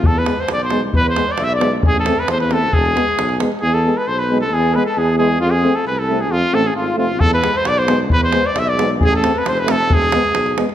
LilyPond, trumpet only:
\new Staff \with { instrumentName = "Trumpet" } { \time 2/4 \tempo 4 = 134 a'16 b'8 c''16 d''16 c''8 r16 | b'16 c''8 d''16 e''16 d''8 r16 | gis'16 a'8 b'16 c''16 b'16 a'8 | gis'4. r8 |
gis'16 a'8 b'16 c''16 b'8 a'16 | gis'8 b'16 a'16 gis'8 gis'8 | f'16 gis'8 a'16 b'16 a'8 gis'16 | f'8 a'16 gis'16 f'8 f'8 |
a'16 b'8 c''16 d''16 c''8 r16 | b'16 c''8 d''16 e''16 d''8 r16 | gis'16 a'8 b'16 c''16 b'16 a'8 | gis'4. r8 | }